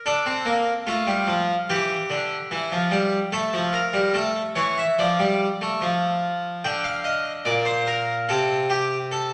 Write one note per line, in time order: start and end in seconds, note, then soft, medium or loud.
0.06 0.26 D4 medium
0.06 0.85 A4 medium
0.26 0.46 C4 medium
0.45 0.71 A#3 medium
0.87 1.07 A3 medium
0.87 1.67 F4 medium
1.07 1.28 G3 medium
1.27 1.53 F3 medium
1.70 1.95 E3 medium
1.70 3.30 G4 medium
2.10 2.36 D3 medium
2.51 2.72 E3 medium
2.72 2.92 F3 medium
2.91 3.17 G3 medium
3.32 3.53 A3 medium
3.32 3.58 A4 medium
3.53 3.79 F3 medium
3.73 3.99 A#4 medium
3.93 4.14 G3 medium
4.14 4.40 A3 medium
4.14 4.41 A4 medium
4.55 4.82 E3 medium
4.55 4.77 C#5 medium
4.78 4.98 E5 medium
4.99 5.19 F3 medium
4.99 6.61 D5 medium
5.19 5.45 G3 medium
5.61 5.82 A3 medium
5.81 6.62 F3 medium
6.64 7.45 D3 medium
6.64 6.85 G5 medium
6.84 7.05 F5 medium
7.04 7.30 D#5 medium
7.45 8.26 A#2 medium
7.45 7.66 D5 medium
7.65 7.87 C5 medium
7.87 8.13 A#4 medium
8.29 9.33 C3 medium
8.29 8.55 A4 medium
8.70 8.96 G4 medium
9.12 9.32 A4 medium